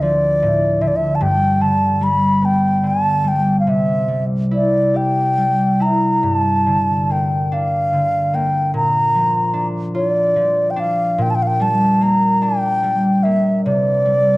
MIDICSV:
0, 0, Header, 1, 3, 480
1, 0, Start_track
1, 0, Tempo, 806452
1, 718, Time_signature, 6, 3, 24, 8
1, 1685, Tempo, 849858
1, 4565, Tempo, 818554
1, 8343, End_track
2, 0, Start_track
2, 0, Title_t, "Flute"
2, 0, Program_c, 0, 73
2, 10, Note_on_c, 0, 74, 85
2, 488, Note_on_c, 0, 76, 81
2, 496, Note_off_c, 0, 74, 0
2, 522, Note_on_c, 0, 74, 70
2, 531, Note_off_c, 0, 76, 0
2, 573, Note_on_c, 0, 76, 84
2, 581, Note_off_c, 0, 74, 0
2, 686, Note_on_c, 0, 81, 70
2, 695, Note_off_c, 0, 76, 0
2, 728, Note_on_c, 0, 79, 95
2, 737, Note_off_c, 0, 81, 0
2, 962, Note_on_c, 0, 81, 84
2, 971, Note_off_c, 0, 79, 0
2, 1209, Note_on_c, 0, 83, 89
2, 1218, Note_off_c, 0, 81, 0
2, 1458, Note_on_c, 0, 79, 88
2, 1467, Note_off_c, 0, 83, 0
2, 1709, Note_on_c, 0, 81, 88
2, 1717, Note_off_c, 0, 79, 0
2, 1939, Note_on_c, 0, 79, 82
2, 1947, Note_off_c, 0, 81, 0
2, 2116, Note_off_c, 0, 79, 0
2, 2119, Note_on_c, 0, 77, 61
2, 2169, Note_on_c, 0, 76, 83
2, 2177, Note_off_c, 0, 77, 0
2, 2488, Note_off_c, 0, 76, 0
2, 2653, Note_on_c, 0, 74, 71
2, 2891, Note_on_c, 0, 79, 79
2, 2899, Note_off_c, 0, 74, 0
2, 3372, Note_on_c, 0, 82, 75
2, 3381, Note_off_c, 0, 79, 0
2, 3609, Note_off_c, 0, 82, 0
2, 3609, Note_on_c, 0, 82, 88
2, 3671, Note_off_c, 0, 82, 0
2, 3671, Note_on_c, 0, 81, 88
2, 4104, Note_on_c, 0, 79, 75
2, 4113, Note_off_c, 0, 81, 0
2, 4341, Note_on_c, 0, 77, 83
2, 4350, Note_off_c, 0, 79, 0
2, 4811, Note_on_c, 0, 79, 79
2, 4820, Note_off_c, 0, 77, 0
2, 5044, Note_off_c, 0, 79, 0
2, 5053, Note_on_c, 0, 82, 91
2, 5582, Note_off_c, 0, 82, 0
2, 5753, Note_on_c, 0, 74, 84
2, 6192, Note_on_c, 0, 79, 64
2, 6201, Note_off_c, 0, 74, 0
2, 6246, Note_on_c, 0, 77, 82
2, 6255, Note_off_c, 0, 79, 0
2, 6495, Note_on_c, 0, 79, 93
2, 6503, Note_off_c, 0, 77, 0
2, 6543, Note_on_c, 0, 81, 65
2, 6552, Note_off_c, 0, 79, 0
2, 6570, Note_on_c, 0, 79, 96
2, 6579, Note_off_c, 0, 81, 0
2, 6614, Note_on_c, 0, 77, 71
2, 6623, Note_off_c, 0, 79, 0
2, 6642, Note_on_c, 0, 79, 95
2, 6651, Note_off_c, 0, 77, 0
2, 6728, Note_on_c, 0, 81, 85
2, 6737, Note_off_c, 0, 79, 0
2, 6968, Note_on_c, 0, 82, 88
2, 6976, Note_off_c, 0, 81, 0
2, 7206, Note_on_c, 0, 79, 94
2, 7215, Note_off_c, 0, 82, 0
2, 7674, Note_on_c, 0, 76, 86
2, 7683, Note_off_c, 0, 79, 0
2, 7915, Note_off_c, 0, 76, 0
2, 7921, Note_on_c, 0, 74, 86
2, 8343, Note_off_c, 0, 74, 0
2, 8343, End_track
3, 0, Start_track
3, 0, Title_t, "Harp"
3, 0, Program_c, 1, 46
3, 0, Note_on_c, 1, 38, 59
3, 0, Note_on_c, 1, 50, 47
3, 0, Note_on_c, 1, 62, 49
3, 13, Note_on_c, 1, 53, 50
3, 209, Note_off_c, 1, 62, 0
3, 253, Note_on_c, 1, 45, 48
3, 273, Note_off_c, 1, 50, 0
3, 483, Note_on_c, 1, 50, 50
3, 511, Note_off_c, 1, 45, 0
3, 511, Note_off_c, 1, 53, 0
3, 718, Note_on_c, 1, 43, 60
3, 748, Note_off_c, 1, 38, 0
3, 748, Note_off_c, 1, 50, 0
3, 957, Note_on_c, 1, 50, 48
3, 1196, Note_on_c, 1, 55, 46
3, 1438, Note_on_c, 1, 59, 52
3, 1680, Note_off_c, 1, 50, 0
3, 1687, Note_on_c, 1, 50, 45
3, 1713, Note_off_c, 1, 55, 0
3, 1916, Note_on_c, 1, 55, 50
3, 2159, Note_on_c, 1, 48, 52
3, 2184, Note_off_c, 1, 43, 0
3, 2184, Note_off_c, 1, 50, 0
3, 2184, Note_off_c, 1, 55, 0
3, 2192, Note_off_c, 1, 59, 0
3, 2391, Note_on_c, 1, 55, 44
3, 2635, Note_on_c, 1, 64, 43
3, 2876, Note_on_c, 1, 67, 47
3, 3115, Note_off_c, 1, 55, 0
3, 3121, Note_on_c, 1, 55, 43
3, 3359, Note_off_c, 1, 64, 0
3, 3362, Note_on_c, 1, 64, 44
3, 3604, Note_on_c, 1, 43, 51
3, 3637, Note_off_c, 1, 48, 0
3, 3637, Note_off_c, 1, 55, 0
3, 3850, Note_on_c, 1, 50, 41
3, 4094, Note_on_c, 1, 58, 44
3, 4206, Note_off_c, 1, 67, 0
3, 4333, Note_on_c, 1, 62, 48
3, 4558, Note_off_c, 1, 50, 0
3, 4565, Note_on_c, 1, 50, 45
3, 4800, Note_off_c, 1, 58, 0
3, 4802, Note_on_c, 1, 58, 49
3, 4847, Note_off_c, 1, 64, 0
3, 5039, Note_on_c, 1, 46, 55
3, 5069, Note_off_c, 1, 43, 0
3, 5069, Note_off_c, 1, 50, 0
3, 5280, Note_on_c, 1, 53, 48
3, 5504, Note_off_c, 1, 62, 0
3, 5506, Note_on_c, 1, 62, 49
3, 5747, Note_on_c, 1, 65, 55
3, 5982, Note_off_c, 1, 53, 0
3, 5989, Note_on_c, 1, 53, 49
3, 6223, Note_off_c, 1, 62, 0
3, 6226, Note_on_c, 1, 62, 55
3, 6465, Note_off_c, 1, 46, 0
3, 6472, Note_on_c, 1, 46, 63
3, 6504, Note_off_c, 1, 53, 0
3, 6687, Note_off_c, 1, 58, 0
3, 6716, Note_on_c, 1, 55, 52
3, 6958, Note_on_c, 1, 58, 58
3, 7195, Note_off_c, 1, 62, 0
3, 7197, Note_on_c, 1, 62, 60
3, 7226, Note_off_c, 1, 65, 0
3, 7432, Note_off_c, 1, 55, 0
3, 7439, Note_on_c, 1, 55, 53
3, 7681, Note_off_c, 1, 58, 0
3, 7683, Note_on_c, 1, 58, 53
3, 7923, Note_on_c, 1, 48, 63
3, 7945, Note_off_c, 1, 46, 0
3, 7945, Note_off_c, 1, 55, 0
3, 8157, Note_on_c, 1, 55, 46
3, 8343, Note_off_c, 1, 48, 0
3, 8343, Note_off_c, 1, 55, 0
3, 8343, Note_off_c, 1, 58, 0
3, 8343, Note_off_c, 1, 62, 0
3, 8343, End_track
0, 0, End_of_file